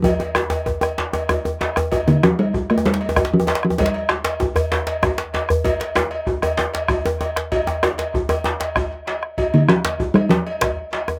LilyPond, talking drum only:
\new Staff \with { instrumentName = "Talking drum" } { \clef bass \time 12/8 \key f \major \tempo 4. = 129 f2. r2. | r8 d8 f8 g4 a8 g4. f4 f8 | g2. r2. | r1. |
r1. | r8 d8 f4. g8 f2. | }